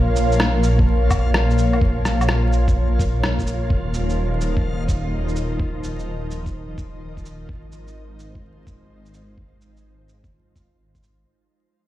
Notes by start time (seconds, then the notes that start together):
Already playing: A#1 F3 A#3 F4 A#4 C#5 F5
0.16 shaker
0.32 shaker
0.40 cross-stick
0.63 shaker
0.79 kick
1.11 kick, low woodblock, shaker
1.34 cross-stick
1.50 shaker
1.58 shaker
1.73 low woodblock
1.81 kick
2.05 cross-stick, shaker
2.21 low woodblock, shaker
2.29 cross-stick
2.53 shaker
2.68 kick, shaker
2.99 kick, shaker
3.24 cross-stick
3.39 kick, shaker
3.47 shaker
3.70 D#1 D#3 D#4 D#5, kick
3.94 shaker
4.10 shaker
4.41 shaker
4.57 kick
4.88 kick, shaker
5.29 shaker
5.36 shaker
5.59 kick
5.84 shaker
5.99 shaker
6.31 shaker
6.46 kick, shaker
6.78 kick, shaker
7.17 kick, shaker
7.25 shaker
7.49 G#1 G#3 C5, kick
7.72 shaker
7.88 shaker
8.19 shaker
8.35 kick
8.67 kick, shaker
9.06 shaker
9.14 shaker
9.38 kick
9.61 shaker
9.77 shaker
10.09 shaker
10.24 kick, shaker
10.56 kick, shaker
10.95 kick, shaker
11.03 shaker